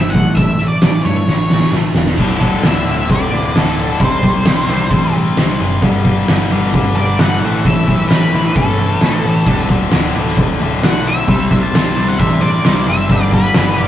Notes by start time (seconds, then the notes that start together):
Already playing: G1 C3 G3 C4 E5
0.10 F#5
0.14 A1 A2 E3 A3, kick, closed hi-hat
0.35 A1 A2 E3 A3 E5, kick, closed hi-hat
0.60 A1 A2 E3, closed hi-hat
0.68 D5
0.81 A1 A2 E3, snare, closed hi-hat
1.04 G2 A2 E3 A3 C#5, closed hi-hat
1.28 A1 A2 E3, snare
1.50 A2 E3, snare
1.60 snare
1.72 A1, snare
1.76 A2 E3 A3
1.95 E1 A2, snare
1.99 E3
2.06 snare
2.17 D1 D2 A2 D3, kick, crash
2.41 D2 A2 D3 A4, kick
2.63 D1 D2 A2 E5, snare, open hi-hat
2.67 D3
2.87 D1 D2 A2 D3
3.09 D1 D2 A2 D3 D5, kick, open hi-hat
3.32 D1 D2 A2 D3
3.55 D1 D2 A2 D3 A4, snare, open hi-hat
3.79 D2 A2 D3
3.99 C2 C3 G3 C4, kick, open hi-hat
4.05 C5
4.23 C2 C3 G3 C4, kick
4.45 C2 C3 G3 C4, snare, open hi-hat
4.68 C2 C3 G3 C4, snare
4.90 A1 C3 G3 C4, kick, open hi-hat
5.14 C3 G3 C4
5.37 C2 C3 G3 C4, snare, open hi-hat
5.60 F#1 C3 G3 C4
5.81 G1 G2 D3 G3, kick, open hi-hat
6.05 G2 D3 G3, kick
6.28 G1 G2 D3 G3, snare, open hi-hat
6.51 G1 G2 D3 G3
6.64 snare
6.74 G1 G2 D3 G3, kick, open hi-hat
6.96 G1 G2 D3 G3 D5
7.19 G1 G2 D3 G3 F#5, snare, open hi-hat
7.42 A1 A2 E3 A3
7.65 A1 A2 E3 A3 E5, kick, open hi-hat
7.87 A1 A2 E3 A3, kick
8.08 A1 A2 E3 A3 B4, snare, open hi-hat
8.33 A1 A2 E3 A3, snare
8.55 G1 A2 E3 A3 A4, kick, open hi-hat
8.78 A2 E3 A3
9.01 A1 A2 E3 A3, snare, open hi-hat
9.24 A1 A2 E3 A3
9.46 D1 D2 A2 D3, kick, open hi-hat
9.69 D2 A2 D3, kick
9.91 D1 D2 A2 D3, snare, open hi-hat
10.16 D1 D2 A2 D3
10.27 snare
10.37 D1 D2 A2 D3, kick, open hi-hat
10.60 D1 D2 A2 D3
10.82 B1 D2 A2 D3 F#5, snare, open hi-hat
11.06 D2 A2 D3 E5
11.28 C2 C3 G3 C4, kick, open hi-hat
11.50 C2 C3 G3 C4, kick
11.63 A5
11.74 C2 C3 G3 C4, snare, open hi-hat
11.97 C2 C3 G3 C4
12.08 F#5
12.19 A1 C3 G3 C4 E5, kick, open hi-hat
12.41 C3 G3 C4 D5
12.64 C2 C3 G3 C4, snare, open hi-hat
12.87 F#1 C3 G3 C4 E5
13.09 G1 G2 D3 G3, kick, open hi-hat
13.32 G2 D3 G3 B4, kick
13.54 G1 G2 D3 G3, snare, open hi-hat
13.77 G1 G2 D3 G3
13.81 D5